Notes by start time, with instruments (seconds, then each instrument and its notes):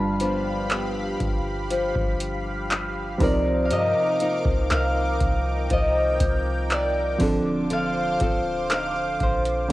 Already playing: 808-style bass G1, nylon-string guitar G2 F3, felt piano G3 D4 F4 B4, analog synth pad G4 F5 B5, harp G5 A5 B5
0.20 nylon-string guitar F3 B3 D4, closed hi-hat
0.70 nylon-string guitar B3, clap, closed hi-hat
1.20 808-style bass G1, kick, closed hi-hat
1.70 nylon-string guitar F3, closed hi-hat
1.95 808-style bass G1, kick
2.20 closed hi-hat
2.70 clap, closed hi-hat
3.18 808-style bass C2, nylon-string guitar C3, felt piano F3 C4 D#4, analog synth pad D#4 A#4 D6, kick, open hi-hat
3.23 felt piano A#4, harp D5
3.65 harp F5
3.70 808-style bass G2, nylon-string guitar C3, harp D#5, closed hi-hat
4.20 nylon-string guitar F3 A#3 D#4, closed hi-hat
4.45 808-style bass C2, kick
4.70 808-style bass C2, nylon-string guitar A#3, harp F5, clap, closed hi-hat
5.20 808-style bass C2, analog synth pad G5, kick, closed hi-hat
5.70 808-style bass C2, nylon-string guitar F3, harp D#5, kick, closed hi-hat
6.20 808-style bass C2, kick, closed hi-hat
6.70 harp D5, clap, closed hi-hat
7.18 808-style bass D1, nylon-string guitar D3, felt piano F3 C4 D4, analog synth pad C5 F5 D6, kick, open hi-hat
7.23 felt piano A4
7.70 nylon-string guitar D3, harp F5, closed hi-hat
8.20 808-style bass D1, nylon-string guitar C4 F4 A4, kick, closed hi-hat
8.70 nylon-string guitar D#4, harp F5, clap, closed hi-hat
8.96 nylon-string guitar F4
9.20 808-style bass A#1, harp C5, kick, closed hi-hat
9.45 closed hi-hat
9.68 felt piano D3